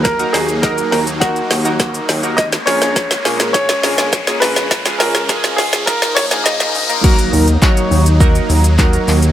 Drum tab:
CC |----------------|----------------|----------------|x---------------|
HH |xxoxxxoxxxoxxxox|xxoxxxoxxxoxxxox|xxoxxxoxxxoxxxox|-xox-xox-xox-xox|
SH |xxxxxxxxxxxxxxxx|xxxxxxxxxxxxxxxx|xxxxxxxxxxxxxxxx|xxxxxxxxxxxxxxxx|
CP |----------------|----------------|----------------|----x-------x-x-|
SD |o-o-o-o-o-o-o-o-|oooooooooooooooo|oooooooooooooo--|----o-------o---|
BD |o---o---o---o---|o---o---o---o---|o---o---o-------|o---o---o---o---|